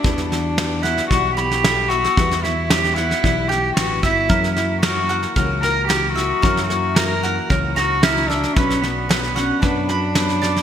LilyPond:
<<
  \new Staff \with { instrumentName = "Mandolin" } { \time 4/4 \key fis \phrygian \tempo 4 = 113 r4. fis''4 b''4 e''8~ | e''4. fis''4 g''4 e''8 | ais'4 ais'8 fis''8 ais'8 ais''8 ais'8 e''8 | ais'4 ais'8 fis''8 ais'8 ais''8 ais'8 e''8 |
b'4 b'8 fis''8 b'8 b''8 b'8 d''8 | }
  \new Staff \with { instrumentName = "Cello" } { \time 4/4 \key fis \phrygian d'8 d'4 e'8 fis'8 g'4 fis'8~ | fis'8 e'8 g'8 e'4 g'8 fis'8 e'8~ | e'8 e'8 fis'4 r8 ais'8 g'8 fis'8~ | fis'8 fis'8 ais'4 r8 fis'8 e'8 d'8 |
cis'8 b4 cis'8 d'2 | }
  \new Staff \with { instrumentName = "Felt piano" } { \time 4/4 \key fis \phrygian <g e' fis' b'>4 <g e' fis' b'>4 <g e' fis' d''>4 <g e' fis' a'>4 | <g e' fis' b'>4 <g e' fis' cis''>4 <g e' fis' d''>4 <fis g e' b'>4 | <fis cis' e' ais'>4 <fis cis' e' cis''>4 <fis cis' e' ais'>4 <fis cis' e' fis'>4 | <fis cis' e' ais'>4 <fis cis' e' fis'>4 <fis cis' e' cis''>4 <fis cis' e'>4 |
<fis b d' b'>4 <fis b d' b'>4 <fis b d' b'>4 <fis b d' b'>4 | }
  \new Staff \with { instrumentName = "Felt piano" } { \clef bass \time 4/4 \key fis \phrygian <e, e>1 | <e, e>1 | <fis,, fis,>1 | <fis,, fis,>1 |
<b,, b,>1 | }
  \new Staff \with { instrumentName = "Steel-string acoustic guitar" } { \time 4/4 \key fis \phrygian <e g b e' fis'>8 <b e' fis'>8 <g b e' fis'>8 <b e' fis'>8 <e g b e' fis'>8 <b e' fis'>8 <g fis'>8 <b e' fis'>8 | <e g b e' fis'>8 <b e' fis'>8 <g b e' fis'>8 <b e' fis'>8 <e g b e' fis'>8 <b e' fis'>8 <g b e' fis'>8 <b e' fis'>8 | <fis, cis e ais e' fis'>8 <e ais e' fis'>8 <e e' fis'>8 <e ais e' fis'>8 <fis, cis e ais e' fis'>8 <e ais e' fis'>8 <e ais e' fis'>8 <e ais e' fis'>8 | <fis, cis e ais e' fis'>8 <e ais e' fis'>8 <e e' fis'>8 <e ais e' fis'>8 <fis, cis e ais e' fis'>8 <e ais e' fis'>8 <e ais e'>8 <e ais e' fis'>8 |
<b, fis b d' fis'>8 <b d' fis'>8 <fis b d' fis'>8 <b d' fis'>8 <b, fis b d' fis'>8 <b d' fis'>8 <fis b d' fis'>8 <b d' fis'>8 | }
  \new Staff \with { instrumentName = "Fingered electric bass" } { \clef bass \time 4/4 \key fis \phrygian e,2 b,,2 | e,2 b,,4 a,,8 g,,8 | fis,2 cis,2 | fis,2 cis,2 |
b,,2 fis,2 | }
  \new DrumStaff \with { instrumentName = "Drums" } \drummode { \time 4/4 <bd sn>16 sn16 sn8 sn8 sn16 sn16 <bd sn>8 sn16 sn16 sn8 sn16 sn16 | <bd sn>16 sn16 sn8 sn16 sn16 sn16 sn16 <bd sn>8 sn8 sn8 <bd sn>8 | <bd sn>16 sn16 sn8 sn8 sn16 sn16 <bd sn>8 sn8 sn8 sn8 | <bd sn>16 sn16 sn8 sn8 sn8 <bd sn>8 sn8 sn16 sn16 sn16 sn16 |
<bd sn>16 sn16 sn8 sn16 sn16 sn8 <bd sn>8 sn8 sn16 sn16 sn16 sn16 | }
>>